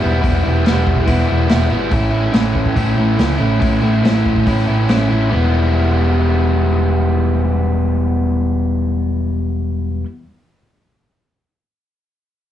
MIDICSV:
0, 0, Header, 1, 4, 480
1, 0, Start_track
1, 0, Tempo, 424929
1, 265, Time_signature, 4, 2, 24, 8
1, 14135, End_track
2, 0, Start_track
2, 0, Title_t, "Overdriven electric guitar"
2, 0, Program_c, 0, 29
2, 0, Note_on_c, 0, 52, 78
2, 27, Note_on_c, 0, 64, 70
2, 44, Note_on_c, 0, 59, 62
2, 51, Note_on_c, 0, 55, 63
2, 231, Note_off_c, 0, 52, 0
2, 236, Note_on_c, 0, 52, 86
2, 238, Note_off_c, 0, 55, 0
2, 243, Note_off_c, 0, 59, 0
2, 251, Note_on_c, 0, 55, 100
2, 256, Note_on_c, 0, 59, 99
2, 265, Note_off_c, 0, 64, 0
2, 270, Note_on_c, 0, 64, 91
2, 480, Note_off_c, 0, 64, 0
2, 484, Note_off_c, 0, 59, 0
2, 484, Note_on_c, 0, 64, 67
2, 497, Note_on_c, 0, 59, 70
2, 505, Note_off_c, 0, 55, 0
2, 519, Note_on_c, 0, 55, 58
2, 725, Note_off_c, 0, 52, 0
2, 730, Note_on_c, 0, 52, 75
2, 734, Note_off_c, 0, 55, 0
2, 738, Note_off_c, 0, 59, 0
2, 748, Note_on_c, 0, 55, 81
2, 752, Note_on_c, 0, 59, 76
2, 755, Note_off_c, 0, 64, 0
2, 760, Note_on_c, 0, 64, 80
2, 1187, Note_off_c, 0, 55, 0
2, 1190, Note_off_c, 0, 52, 0
2, 1195, Note_off_c, 0, 59, 0
2, 1195, Note_on_c, 0, 52, 93
2, 1201, Note_on_c, 0, 55, 87
2, 1209, Note_on_c, 0, 59, 85
2, 1223, Note_off_c, 0, 64, 0
2, 1227, Note_on_c, 0, 64, 83
2, 1431, Note_off_c, 0, 64, 0
2, 1435, Note_on_c, 0, 64, 54
2, 1445, Note_off_c, 0, 59, 0
2, 1450, Note_off_c, 0, 55, 0
2, 1458, Note_on_c, 0, 59, 55
2, 1464, Note_on_c, 0, 55, 55
2, 1665, Note_off_c, 0, 55, 0
2, 1666, Note_off_c, 0, 52, 0
2, 1671, Note_on_c, 0, 52, 73
2, 1678, Note_off_c, 0, 59, 0
2, 1678, Note_on_c, 0, 55, 85
2, 1692, Note_off_c, 0, 64, 0
2, 1692, Note_on_c, 0, 59, 72
2, 1696, Note_on_c, 0, 64, 85
2, 1914, Note_off_c, 0, 64, 0
2, 1919, Note_on_c, 0, 64, 74
2, 1923, Note_off_c, 0, 59, 0
2, 1932, Note_off_c, 0, 55, 0
2, 1936, Note_on_c, 0, 59, 67
2, 1946, Note_on_c, 0, 55, 58
2, 2153, Note_on_c, 0, 45, 86
2, 2158, Note_off_c, 0, 59, 0
2, 2160, Note_off_c, 0, 52, 0
2, 2161, Note_off_c, 0, 55, 0
2, 2164, Note_on_c, 0, 52, 98
2, 2165, Note_on_c, 0, 57, 88
2, 2177, Note_off_c, 0, 64, 0
2, 2182, Note_on_c, 0, 61, 90
2, 2182, Note_on_c, 0, 64, 103
2, 2375, Note_off_c, 0, 64, 0
2, 2379, Note_on_c, 0, 64, 74
2, 2392, Note_off_c, 0, 61, 0
2, 2396, Note_on_c, 0, 61, 67
2, 2407, Note_off_c, 0, 57, 0
2, 2412, Note_on_c, 0, 57, 52
2, 2618, Note_off_c, 0, 52, 0
2, 2622, Note_on_c, 0, 52, 75
2, 2625, Note_off_c, 0, 57, 0
2, 2629, Note_on_c, 0, 57, 78
2, 2638, Note_off_c, 0, 61, 0
2, 2643, Note_on_c, 0, 61, 81
2, 2648, Note_off_c, 0, 64, 0
2, 2652, Note_on_c, 0, 64, 71
2, 3095, Note_off_c, 0, 45, 0
2, 3099, Note_on_c, 0, 45, 87
2, 3105, Note_off_c, 0, 57, 0
2, 3106, Note_off_c, 0, 52, 0
2, 3111, Note_off_c, 0, 61, 0
2, 3111, Note_on_c, 0, 52, 79
2, 3118, Note_on_c, 0, 57, 94
2, 3125, Note_off_c, 0, 64, 0
2, 3125, Note_on_c, 0, 61, 86
2, 3130, Note_on_c, 0, 64, 83
2, 3348, Note_off_c, 0, 64, 0
2, 3353, Note_on_c, 0, 64, 64
2, 3355, Note_off_c, 0, 61, 0
2, 3368, Note_off_c, 0, 57, 0
2, 3368, Note_on_c, 0, 61, 59
2, 3381, Note_on_c, 0, 57, 51
2, 3574, Note_off_c, 0, 57, 0
2, 3575, Note_off_c, 0, 52, 0
2, 3579, Note_on_c, 0, 52, 71
2, 3587, Note_on_c, 0, 57, 86
2, 3588, Note_off_c, 0, 61, 0
2, 3590, Note_off_c, 0, 45, 0
2, 3602, Note_on_c, 0, 61, 73
2, 3612, Note_off_c, 0, 64, 0
2, 3616, Note_on_c, 0, 64, 80
2, 3809, Note_off_c, 0, 64, 0
2, 3814, Note_on_c, 0, 64, 69
2, 3818, Note_off_c, 0, 61, 0
2, 3831, Note_on_c, 0, 61, 58
2, 3836, Note_off_c, 0, 57, 0
2, 3849, Note_on_c, 0, 57, 53
2, 4059, Note_off_c, 0, 52, 0
2, 4059, Note_off_c, 0, 61, 0
2, 4059, Note_on_c, 0, 45, 90
2, 4060, Note_off_c, 0, 57, 0
2, 4063, Note_on_c, 0, 52, 84
2, 4065, Note_off_c, 0, 64, 0
2, 4073, Note_on_c, 0, 61, 85
2, 4074, Note_on_c, 0, 57, 90
2, 4079, Note_on_c, 0, 64, 93
2, 4289, Note_off_c, 0, 64, 0
2, 4302, Note_off_c, 0, 61, 0
2, 4302, Note_on_c, 0, 64, 69
2, 4316, Note_on_c, 0, 61, 64
2, 4322, Note_off_c, 0, 57, 0
2, 4336, Note_on_c, 0, 57, 57
2, 4534, Note_off_c, 0, 52, 0
2, 4548, Note_off_c, 0, 57, 0
2, 4548, Note_on_c, 0, 52, 72
2, 4550, Note_off_c, 0, 45, 0
2, 4550, Note_off_c, 0, 61, 0
2, 4561, Note_on_c, 0, 57, 78
2, 4562, Note_off_c, 0, 64, 0
2, 4563, Note_on_c, 0, 61, 80
2, 4576, Note_on_c, 0, 64, 84
2, 5030, Note_off_c, 0, 52, 0
2, 5037, Note_off_c, 0, 57, 0
2, 5040, Note_on_c, 0, 45, 78
2, 5044, Note_on_c, 0, 52, 83
2, 5050, Note_off_c, 0, 61, 0
2, 5051, Note_on_c, 0, 57, 79
2, 5054, Note_off_c, 0, 64, 0
2, 5063, Note_on_c, 0, 61, 94
2, 5068, Note_on_c, 0, 64, 98
2, 5268, Note_off_c, 0, 64, 0
2, 5281, Note_on_c, 0, 64, 61
2, 5289, Note_off_c, 0, 61, 0
2, 5302, Note_on_c, 0, 61, 54
2, 5304, Note_off_c, 0, 57, 0
2, 5318, Note_on_c, 0, 57, 45
2, 5509, Note_off_c, 0, 52, 0
2, 5521, Note_off_c, 0, 45, 0
2, 5523, Note_on_c, 0, 52, 65
2, 5524, Note_off_c, 0, 57, 0
2, 5529, Note_off_c, 0, 61, 0
2, 5532, Note_off_c, 0, 64, 0
2, 5537, Note_on_c, 0, 57, 63
2, 5542, Note_on_c, 0, 61, 71
2, 5545, Note_on_c, 0, 64, 75
2, 5745, Note_off_c, 0, 64, 0
2, 5759, Note_on_c, 0, 64, 71
2, 5765, Note_off_c, 0, 61, 0
2, 5779, Note_on_c, 0, 61, 58
2, 5782, Note_off_c, 0, 57, 0
2, 5795, Note_on_c, 0, 57, 49
2, 5970, Note_off_c, 0, 52, 0
2, 5984, Note_on_c, 0, 52, 76
2, 5986, Note_off_c, 0, 64, 0
2, 5996, Note_off_c, 0, 57, 0
2, 5996, Note_off_c, 0, 61, 0
2, 6000, Note_on_c, 0, 55, 96
2, 6007, Note_on_c, 0, 59, 85
2, 6025, Note_on_c, 0, 64, 96
2, 11338, Note_off_c, 0, 52, 0
2, 11354, Note_off_c, 0, 55, 0
2, 11362, Note_off_c, 0, 59, 0
2, 11379, Note_off_c, 0, 64, 0
2, 14135, End_track
3, 0, Start_track
3, 0, Title_t, "Picked electric bass"
3, 0, Program_c, 1, 34
3, 42, Note_on_c, 1, 28, 77
3, 237, Note_off_c, 1, 28, 0
3, 264, Note_on_c, 1, 28, 87
3, 466, Note_off_c, 1, 28, 0
3, 514, Note_on_c, 1, 28, 87
3, 710, Note_off_c, 1, 28, 0
3, 762, Note_on_c, 1, 28, 82
3, 955, Note_off_c, 1, 28, 0
3, 977, Note_on_c, 1, 28, 79
3, 1179, Note_off_c, 1, 28, 0
3, 1217, Note_on_c, 1, 28, 89
3, 1418, Note_off_c, 1, 28, 0
3, 1473, Note_on_c, 1, 28, 85
3, 1667, Note_off_c, 1, 28, 0
3, 1697, Note_on_c, 1, 28, 84
3, 1897, Note_off_c, 1, 28, 0
3, 1933, Note_on_c, 1, 32, 91
3, 2134, Note_off_c, 1, 32, 0
3, 2159, Note_on_c, 1, 33, 90
3, 2567, Note_off_c, 1, 33, 0
3, 2650, Note_on_c, 1, 33, 83
3, 2851, Note_off_c, 1, 33, 0
3, 2877, Note_on_c, 1, 33, 80
3, 3083, Note_off_c, 1, 33, 0
3, 3121, Note_on_c, 1, 33, 79
3, 3325, Note_off_c, 1, 33, 0
3, 3353, Note_on_c, 1, 33, 82
3, 3560, Note_off_c, 1, 33, 0
3, 3607, Note_on_c, 1, 37, 75
3, 3808, Note_off_c, 1, 37, 0
3, 3834, Note_on_c, 1, 33, 87
3, 4040, Note_off_c, 1, 33, 0
3, 4085, Note_on_c, 1, 33, 80
3, 4287, Note_off_c, 1, 33, 0
3, 4318, Note_on_c, 1, 33, 72
3, 4522, Note_off_c, 1, 33, 0
3, 4570, Note_on_c, 1, 33, 78
3, 4769, Note_off_c, 1, 33, 0
3, 4810, Note_on_c, 1, 33, 81
3, 5009, Note_off_c, 1, 33, 0
3, 5049, Note_on_c, 1, 33, 76
3, 5249, Note_off_c, 1, 33, 0
3, 5288, Note_on_c, 1, 33, 76
3, 5488, Note_off_c, 1, 33, 0
3, 5530, Note_on_c, 1, 33, 77
3, 5730, Note_off_c, 1, 33, 0
3, 5774, Note_on_c, 1, 33, 75
3, 5972, Note_off_c, 1, 33, 0
3, 6017, Note_on_c, 1, 28, 86
3, 11326, Note_off_c, 1, 28, 0
3, 14135, End_track
4, 0, Start_track
4, 0, Title_t, "Drums"
4, 270, Note_on_c, 9, 36, 101
4, 272, Note_on_c, 9, 46, 48
4, 383, Note_off_c, 9, 36, 0
4, 385, Note_off_c, 9, 46, 0
4, 744, Note_on_c, 9, 46, 49
4, 752, Note_on_c, 9, 38, 97
4, 857, Note_off_c, 9, 46, 0
4, 865, Note_off_c, 9, 38, 0
4, 981, Note_on_c, 9, 36, 84
4, 1094, Note_off_c, 9, 36, 0
4, 1097, Note_on_c, 9, 36, 67
4, 1210, Note_off_c, 9, 36, 0
4, 1213, Note_on_c, 9, 46, 55
4, 1216, Note_on_c, 9, 36, 97
4, 1326, Note_off_c, 9, 46, 0
4, 1329, Note_off_c, 9, 36, 0
4, 1338, Note_on_c, 9, 38, 26
4, 1451, Note_off_c, 9, 38, 0
4, 1686, Note_on_c, 9, 46, 51
4, 1694, Note_on_c, 9, 38, 105
4, 1799, Note_off_c, 9, 46, 0
4, 1807, Note_off_c, 9, 38, 0
4, 2159, Note_on_c, 9, 46, 49
4, 2165, Note_on_c, 9, 36, 98
4, 2272, Note_off_c, 9, 46, 0
4, 2278, Note_off_c, 9, 36, 0
4, 2637, Note_on_c, 9, 46, 52
4, 2645, Note_on_c, 9, 38, 111
4, 2750, Note_off_c, 9, 46, 0
4, 2758, Note_off_c, 9, 38, 0
4, 2882, Note_on_c, 9, 36, 72
4, 2995, Note_off_c, 9, 36, 0
4, 3002, Note_on_c, 9, 36, 69
4, 3115, Note_off_c, 9, 36, 0
4, 3123, Note_on_c, 9, 36, 91
4, 3124, Note_on_c, 9, 46, 44
4, 3236, Note_off_c, 9, 36, 0
4, 3237, Note_off_c, 9, 46, 0
4, 3601, Note_on_c, 9, 46, 49
4, 3609, Note_on_c, 9, 38, 98
4, 3714, Note_off_c, 9, 46, 0
4, 3722, Note_off_c, 9, 38, 0
4, 4085, Note_on_c, 9, 46, 48
4, 4087, Note_on_c, 9, 36, 93
4, 4198, Note_off_c, 9, 46, 0
4, 4200, Note_off_c, 9, 36, 0
4, 4573, Note_on_c, 9, 46, 47
4, 4581, Note_on_c, 9, 38, 106
4, 4686, Note_off_c, 9, 46, 0
4, 4694, Note_off_c, 9, 38, 0
4, 4809, Note_on_c, 9, 36, 82
4, 4922, Note_off_c, 9, 36, 0
4, 4928, Note_on_c, 9, 36, 69
4, 5041, Note_off_c, 9, 36, 0
4, 5045, Note_on_c, 9, 46, 52
4, 5046, Note_on_c, 9, 36, 93
4, 5158, Note_off_c, 9, 46, 0
4, 5159, Note_off_c, 9, 36, 0
4, 5177, Note_on_c, 9, 38, 25
4, 5290, Note_off_c, 9, 38, 0
4, 5522, Note_on_c, 9, 46, 50
4, 5530, Note_on_c, 9, 38, 99
4, 5635, Note_off_c, 9, 46, 0
4, 5643, Note_off_c, 9, 38, 0
4, 14135, End_track
0, 0, End_of_file